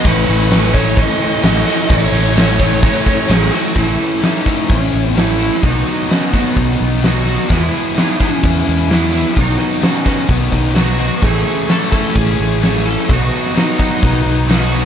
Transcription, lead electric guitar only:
0, 0, Header, 1, 2, 480
1, 0, Start_track
1, 0, Tempo, 465839
1, 55, Time_signature, 4, 2, 24, 8
1, 15302, End_track
2, 0, Start_track
2, 0, Title_t, "Lead electric guitar"
2, 0, Program_c, 0, 29
2, 61, Note_on_c, 0, 71, 85
2, 764, Note_on_c, 0, 73, 90
2, 794, Note_off_c, 0, 71, 0
2, 988, Note_off_c, 0, 73, 0
2, 1014, Note_on_c, 0, 75, 100
2, 1949, Note_off_c, 0, 75, 0
2, 1953, Note_on_c, 0, 73, 78
2, 3352, Note_off_c, 0, 73, 0
2, 3406, Note_on_c, 0, 68, 93
2, 3642, Note_on_c, 0, 66, 88
2, 3649, Note_off_c, 0, 68, 0
2, 3882, Note_off_c, 0, 66, 0
2, 3886, Note_on_c, 0, 64, 81
2, 4352, Note_off_c, 0, 64, 0
2, 4356, Note_on_c, 0, 63, 80
2, 4850, Note_on_c, 0, 61, 85
2, 4853, Note_off_c, 0, 63, 0
2, 5307, Note_on_c, 0, 64, 83
2, 5341, Note_off_c, 0, 61, 0
2, 5796, Note_off_c, 0, 64, 0
2, 5800, Note_on_c, 0, 63, 80
2, 6282, Note_on_c, 0, 61, 82
2, 6298, Note_off_c, 0, 63, 0
2, 6514, Note_off_c, 0, 61, 0
2, 6518, Note_on_c, 0, 59, 88
2, 7263, Note_on_c, 0, 66, 89
2, 7267, Note_off_c, 0, 59, 0
2, 7737, Note_off_c, 0, 66, 0
2, 7741, Note_on_c, 0, 64, 90
2, 8194, Note_off_c, 0, 64, 0
2, 8198, Note_on_c, 0, 63, 88
2, 8436, Note_on_c, 0, 61, 89
2, 8453, Note_off_c, 0, 63, 0
2, 9165, Note_on_c, 0, 64, 88
2, 9189, Note_off_c, 0, 61, 0
2, 9630, Note_off_c, 0, 64, 0
2, 9634, Note_on_c, 0, 63, 86
2, 9867, Note_off_c, 0, 63, 0
2, 9880, Note_on_c, 0, 63, 87
2, 10129, Note_on_c, 0, 61, 87
2, 10136, Note_off_c, 0, 63, 0
2, 10591, Note_off_c, 0, 61, 0
2, 10595, Note_on_c, 0, 59, 84
2, 10835, Note_on_c, 0, 63, 80
2, 10855, Note_off_c, 0, 59, 0
2, 11076, Note_off_c, 0, 63, 0
2, 11080, Note_on_c, 0, 66, 91
2, 11577, Note_on_c, 0, 68, 92
2, 11585, Note_off_c, 0, 66, 0
2, 12049, Note_off_c, 0, 68, 0
2, 12054, Note_on_c, 0, 69, 95
2, 12275, Note_off_c, 0, 69, 0
2, 12287, Note_on_c, 0, 69, 94
2, 12526, Note_off_c, 0, 69, 0
2, 12530, Note_on_c, 0, 68, 105
2, 12757, Note_off_c, 0, 68, 0
2, 12789, Note_on_c, 0, 68, 97
2, 13271, Note_off_c, 0, 68, 0
2, 13275, Note_on_c, 0, 69, 96
2, 13513, Note_off_c, 0, 69, 0
2, 13513, Note_on_c, 0, 66, 95
2, 13998, Note_off_c, 0, 66, 0
2, 14007, Note_on_c, 0, 63, 92
2, 14960, Note_off_c, 0, 63, 0
2, 14964, Note_on_c, 0, 66, 95
2, 15302, Note_off_c, 0, 66, 0
2, 15302, End_track
0, 0, End_of_file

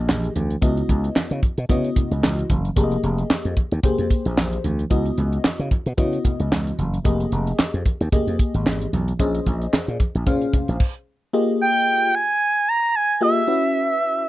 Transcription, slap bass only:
0, 0, Header, 1, 3, 480
1, 0, Start_track
1, 0, Tempo, 535714
1, 557, Time_signature, 4, 2, 24, 8
1, 12802, End_track
2, 0, Start_track
2, 0, Title_t, "Slap bass"
2, 0, Program_c, 0, 36
2, 79, Note_on_c, 0, 34, 90
2, 252, Note_off_c, 0, 34, 0
2, 318, Note_on_c, 0, 38, 82
2, 491, Note_off_c, 0, 38, 0
2, 556, Note_on_c, 0, 37, 100
2, 730, Note_off_c, 0, 37, 0
2, 799, Note_on_c, 0, 37, 101
2, 971, Note_off_c, 0, 37, 0
2, 1172, Note_on_c, 0, 49, 94
2, 1248, Note_off_c, 0, 49, 0
2, 1413, Note_on_c, 0, 47, 85
2, 1489, Note_off_c, 0, 47, 0
2, 1519, Note_on_c, 0, 49, 103
2, 1691, Note_off_c, 0, 49, 0
2, 1892, Note_on_c, 0, 37, 78
2, 1968, Note_off_c, 0, 37, 0
2, 2000, Note_on_c, 0, 37, 89
2, 2172, Note_off_c, 0, 37, 0
2, 2237, Note_on_c, 0, 30, 84
2, 2410, Note_off_c, 0, 30, 0
2, 2478, Note_on_c, 0, 29, 102
2, 2651, Note_off_c, 0, 29, 0
2, 2717, Note_on_c, 0, 29, 98
2, 2890, Note_off_c, 0, 29, 0
2, 3092, Note_on_c, 0, 41, 89
2, 3168, Note_off_c, 0, 41, 0
2, 3332, Note_on_c, 0, 39, 77
2, 3408, Note_off_c, 0, 39, 0
2, 3573, Note_on_c, 0, 41, 92
2, 3649, Note_off_c, 0, 41, 0
2, 3814, Note_on_c, 0, 34, 87
2, 3889, Note_off_c, 0, 34, 0
2, 3919, Note_on_c, 0, 34, 87
2, 4091, Note_off_c, 0, 34, 0
2, 4158, Note_on_c, 0, 38, 82
2, 4331, Note_off_c, 0, 38, 0
2, 4396, Note_on_c, 0, 37, 106
2, 4570, Note_off_c, 0, 37, 0
2, 4639, Note_on_c, 0, 37, 100
2, 4811, Note_off_c, 0, 37, 0
2, 5012, Note_on_c, 0, 49, 94
2, 5088, Note_off_c, 0, 49, 0
2, 5253, Note_on_c, 0, 47, 93
2, 5329, Note_off_c, 0, 47, 0
2, 5357, Note_on_c, 0, 49, 108
2, 5530, Note_off_c, 0, 49, 0
2, 5733, Note_on_c, 0, 37, 78
2, 5809, Note_off_c, 0, 37, 0
2, 5838, Note_on_c, 0, 37, 100
2, 6011, Note_off_c, 0, 37, 0
2, 6078, Note_on_c, 0, 30, 84
2, 6251, Note_off_c, 0, 30, 0
2, 6318, Note_on_c, 0, 29, 94
2, 6491, Note_off_c, 0, 29, 0
2, 6558, Note_on_c, 0, 29, 104
2, 6731, Note_off_c, 0, 29, 0
2, 6934, Note_on_c, 0, 41, 91
2, 7009, Note_off_c, 0, 41, 0
2, 7174, Note_on_c, 0, 39, 87
2, 7249, Note_off_c, 0, 39, 0
2, 7412, Note_on_c, 0, 41, 89
2, 7488, Note_off_c, 0, 41, 0
2, 7653, Note_on_c, 0, 32, 80
2, 7729, Note_off_c, 0, 32, 0
2, 7760, Note_on_c, 0, 32, 80
2, 7932, Note_off_c, 0, 32, 0
2, 7999, Note_on_c, 0, 35, 86
2, 8171, Note_off_c, 0, 35, 0
2, 8239, Note_on_c, 0, 34, 104
2, 8411, Note_off_c, 0, 34, 0
2, 8481, Note_on_c, 0, 34, 91
2, 8652, Note_off_c, 0, 34, 0
2, 8853, Note_on_c, 0, 46, 85
2, 8929, Note_off_c, 0, 46, 0
2, 9095, Note_on_c, 0, 34, 76
2, 9170, Note_off_c, 0, 34, 0
2, 9198, Note_on_c, 0, 46, 107
2, 9371, Note_off_c, 0, 46, 0
2, 9574, Note_on_c, 0, 34, 80
2, 9649, Note_off_c, 0, 34, 0
2, 12802, End_track
3, 0, Start_track
3, 0, Title_t, "Muted slap bass strokes"
3, 1039, Note_on_c, 9, 29, 40
3, 1129, Note_off_c, 9, 29, 0
3, 2959, Note_on_c, 9, 29, 42
3, 3048, Note_off_c, 9, 29, 0
3, 3437, Note_on_c, 9, 29, 44
3, 3526, Note_off_c, 9, 29, 0
3, 4879, Note_on_c, 9, 29, 46
3, 4968, Note_off_c, 9, 29, 0
3, 6801, Note_on_c, 9, 29, 44
3, 6891, Note_off_c, 9, 29, 0
3, 8719, Note_on_c, 9, 29, 44
3, 8808, Note_off_c, 9, 29, 0
3, 12802, End_track
0, 0, End_of_file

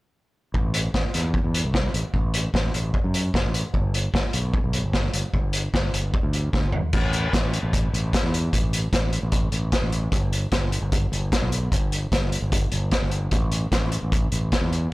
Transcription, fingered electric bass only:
0, 0, Header, 1, 2, 480
1, 0, Start_track
1, 0, Tempo, 399202
1, 665, Time_signature, 4, 2, 24, 8
1, 17953, End_track
2, 0, Start_track
2, 0, Title_t, "Fingered electric bass"
2, 0, Program_c, 0, 33
2, 649, Note_on_c, 0, 33, 89
2, 1048, Note_off_c, 0, 33, 0
2, 1133, Note_on_c, 0, 33, 90
2, 1235, Note_off_c, 0, 33, 0
2, 1381, Note_on_c, 0, 40, 75
2, 1676, Note_off_c, 0, 40, 0
2, 1736, Note_on_c, 0, 40, 76
2, 1934, Note_off_c, 0, 40, 0
2, 1970, Note_on_c, 0, 36, 72
2, 2269, Note_off_c, 0, 36, 0
2, 2335, Note_on_c, 0, 33, 78
2, 2435, Note_off_c, 0, 33, 0
2, 2573, Note_on_c, 0, 33, 88
2, 2969, Note_off_c, 0, 33, 0
2, 3055, Note_on_c, 0, 33, 86
2, 3253, Note_off_c, 0, 33, 0
2, 3304, Note_on_c, 0, 33, 71
2, 3499, Note_off_c, 0, 33, 0
2, 3659, Note_on_c, 0, 42, 74
2, 3954, Note_off_c, 0, 42, 0
2, 4018, Note_on_c, 0, 30, 75
2, 4117, Note_off_c, 0, 30, 0
2, 4149, Note_on_c, 0, 33, 78
2, 4342, Note_off_c, 0, 33, 0
2, 4492, Note_on_c, 0, 31, 89
2, 4889, Note_off_c, 0, 31, 0
2, 4976, Note_on_c, 0, 31, 98
2, 5076, Note_off_c, 0, 31, 0
2, 5218, Note_on_c, 0, 35, 82
2, 5514, Note_off_c, 0, 35, 0
2, 5581, Note_on_c, 0, 35, 82
2, 5777, Note_off_c, 0, 35, 0
2, 5820, Note_on_c, 0, 31, 78
2, 6116, Note_off_c, 0, 31, 0
2, 6178, Note_on_c, 0, 31, 78
2, 6278, Note_off_c, 0, 31, 0
2, 6417, Note_on_c, 0, 31, 88
2, 6813, Note_off_c, 0, 31, 0
2, 6897, Note_on_c, 0, 31, 85
2, 7096, Note_off_c, 0, 31, 0
2, 7139, Note_on_c, 0, 31, 80
2, 7337, Note_off_c, 0, 31, 0
2, 7494, Note_on_c, 0, 38, 78
2, 7792, Note_off_c, 0, 38, 0
2, 7851, Note_on_c, 0, 38, 72
2, 7954, Note_off_c, 0, 38, 0
2, 7983, Note_on_c, 0, 31, 82
2, 8180, Note_off_c, 0, 31, 0
2, 8337, Note_on_c, 0, 33, 84
2, 8733, Note_off_c, 0, 33, 0
2, 8816, Note_on_c, 0, 33, 87
2, 9114, Note_off_c, 0, 33, 0
2, 9173, Note_on_c, 0, 33, 83
2, 9472, Note_off_c, 0, 33, 0
2, 9540, Note_on_c, 0, 33, 87
2, 9738, Note_off_c, 0, 33, 0
2, 9898, Note_on_c, 0, 40, 85
2, 10195, Note_off_c, 0, 40, 0
2, 10259, Note_on_c, 0, 33, 90
2, 10653, Note_off_c, 0, 33, 0
2, 10737, Note_on_c, 0, 33, 78
2, 11034, Note_off_c, 0, 33, 0
2, 11100, Note_on_c, 0, 33, 74
2, 11396, Note_off_c, 0, 33, 0
2, 11451, Note_on_c, 0, 33, 84
2, 11652, Note_off_c, 0, 33, 0
2, 11809, Note_on_c, 0, 33, 81
2, 12109, Note_off_c, 0, 33, 0
2, 12166, Note_on_c, 0, 31, 92
2, 12566, Note_off_c, 0, 31, 0
2, 12650, Note_on_c, 0, 31, 91
2, 12950, Note_off_c, 0, 31, 0
2, 13006, Note_on_c, 0, 31, 77
2, 13307, Note_off_c, 0, 31, 0
2, 13369, Note_on_c, 0, 31, 90
2, 13571, Note_off_c, 0, 31, 0
2, 13736, Note_on_c, 0, 35, 81
2, 14033, Note_off_c, 0, 35, 0
2, 14093, Note_on_c, 0, 31, 92
2, 14490, Note_off_c, 0, 31, 0
2, 14571, Note_on_c, 0, 31, 85
2, 14871, Note_off_c, 0, 31, 0
2, 14937, Note_on_c, 0, 31, 83
2, 15235, Note_off_c, 0, 31, 0
2, 15294, Note_on_c, 0, 31, 79
2, 15495, Note_off_c, 0, 31, 0
2, 15661, Note_on_c, 0, 31, 81
2, 15957, Note_off_c, 0, 31, 0
2, 16015, Note_on_c, 0, 33, 89
2, 16412, Note_off_c, 0, 33, 0
2, 16492, Note_on_c, 0, 33, 94
2, 16792, Note_off_c, 0, 33, 0
2, 16869, Note_on_c, 0, 33, 79
2, 17162, Note_off_c, 0, 33, 0
2, 17223, Note_on_c, 0, 33, 86
2, 17421, Note_off_c, 0, 33, 0
2, 17572, Note_on_c, 0, 40, 87
2, 17873, Note_off_c, 0, 40, 0
2, 17953, End_track
0, 0, End_of_file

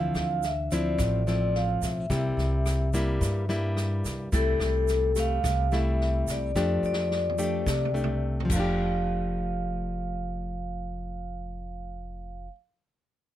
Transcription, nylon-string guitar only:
0, 0, Header, 1, 2, 480
1, 0, Start_track
1, 0, Key_signature, -1, "major"
1, 0, Tempo, 556586
1, 1805, Time_signature, 4, 2, 24, 8
1, 11515, End_track
2, 0, Start_track
2, 0, Title_t, "Nylon-string guitar"
2, 0, Program_c, 0, 24
2, 0, Note_on_c, 0, 50, 52
2, 0, Note_on_c, 0, 53, 51
2, 0, Note_on_c, 0, 60, 54
2, 0, Note_on_c, 0, 64, 56
2, 369, Note_off_c, 0, 53, 0
2, 369, Note_off_c, 0, 60, 0
2, 369, Note_off_c, 0, 64, 0
2, 621, Note_on_c, 0, 53, 54
2, 622, Note_on_c, 0, 60, 56
2, 632, Note_on_c, 0, 64, 66
2, 825, Note_off_c, 0, 50, 0
2, 856, Note_on_c, 0, 45, 55
2, 1054, Note_off_c, 0, 53, 0
2, 1055, Note_off_c, 0, 60, 0
2, 1060, Note_off_c, 0, 64, 0
2, 1097, Note_on_c, 0, 53, 59
2, 1101, Note_on_c, 0, 60, 53
2, 1104, Note_on_c, 0, 64, 59
2, 1773, Note_off_c, 0, 53, 0
2, 1776, Note_off_c, 0, 60, 0
2, 1776, Note_off_c, 0, 64, 0
2, 1787, Note_off_c, 0, 45, 0
2, 1811, Note_on_c, 0, 48, 55
2, 1813, Note_on_c, 0, 55, 55
2, 1815, Note_on_c, 0, 58, 58
2, 1819, Note_on_c, 0, 64, 54
2, 2490, Note_off_c, 0, 58, 0
2, 2491, Note_off_c, 0, 55, 0
2, 2495, Note_off_c, 0, 64, 0
2, 2533, Note_on_c, 0, 55, 60
2, 2539, Note_on_c, 0, 58, 59
2, 2541, Note_on_c, 0, 64, 66
2, 2746, Note_off_c, 0, 48, 0
2, 2772, Note_on_c, 0, 43, 56
2, 2972, Note_off_c, 0, 55, 0
2, 2974, Note_off_c, 0, 58, 0
2, 2974, Note_off_c, 0, 64, 0
2, 3010, Note_on_c, 0, 55, 60
2, 3012, Note_on_c, 0, 58, 52
2, 3015, Note_on_c, 0, 64, 67
2, 3691, Note_off_c, 0, 55, 0
2, 3691, Note_off_c, 0, 58, 0
2, 3693, Note_off_c, 0, 64, 0
2, 3706, Note_off_c, 0, 43, 0
2, 3727, Note_on_c, 0, 48, 53
2, 3733, Note_on_c, 0, 55, 58
2, 3735, Note_on_c, 0, 57, 51
2, 3735, Note_on_c, 0, 64, 58
2, 4411, Note_off_c, 0, 55, 0
2, 4413, Note_off_c, 0, 57, 0
2, 4413, Note_off_c, 0, 64, 0
2, 4449, Note_on_c, 0, 55, 54
2, 4452, Note_on_c, 0, 57, 57
2, 4664, Note_off_c, 0, 48, 0
2, 4687, Note_on_c, 0, 48, 52
2, 4890, Note_off_c, 0, 55, 0
2, 4891, Note_off_c, 0, 57, 0
2, 4933, Note_on_c, 0, 55, 53
2, 4938, Note_on_c, 0, 57, 58
2, 4943, Note_on_c, 0, 64, 52
2, 5612, Note_off_c, 0, 55, 0
2, 5614, Note_off_c, 0, 57, 0
2, 5617, Note_off_c, 0, 64, 0
2, 5623, Note_off_c, 0, 48, 0
2, 5655, Note_on_c, 0, 53, 54
2, 5658, Note_on_c, 0, 57, 49
2, 5660, Note_on_c, 0, 67, 56
2, 5662, Note_on_c, 0, 62, 59
2, 6333, Note_off_c, 0, 57, 0
2, 6334, Note_off_c, 0, 62, 0
2, 6335, Note_off_c, 0, 67, 0
2, 6368, Note_on_c, 0, 57, 52
2, 6372, Note_on_c, 0, 62, 52
2, 6376, Note_on_c, 0, 67, 57
2, 6588, Note_off_c, 0, 53, 0
2, 6615, Note_on_c, 0, 48, 55
2, 6810, Note_off_c, 0, 57, 0
2, 6810, Note_off_c, 0, 62, 0
2, 6813, Note_off_c, 0, 67, 0
2, 6849, Note_on_c, 0, 57, 54
2, 6852, Note_on_c, 0, 62, 53
2, 6854, Note_on_c, 0, 67, 58
2, 7287, Note_on_c, 0, 53, 57
2, 7328, Note_off_c, 0, 57, 0
2, 7328, Note_off_c, 0, 62, 0
2, 7330, Note_off_c, 0, 67, 0
2, 7331, Note_off_c, 0, 48, 0
2, 7337, Note_on_c, 0, 57, 58
2, 7382, Note_on_c, 0, 62, 58
2, 7415, Note_on_c, 0, 67, 61
2, 10759, Note_off_c, 0, 53, 0
2, 10784, Note_off_c, 0, 57, 0
2, 10806, Note_off_c, 0, 62, 0
2, 10823, Note_off_c, 0, 67, 0
2, 11515, End_track
0, 0, End_of_file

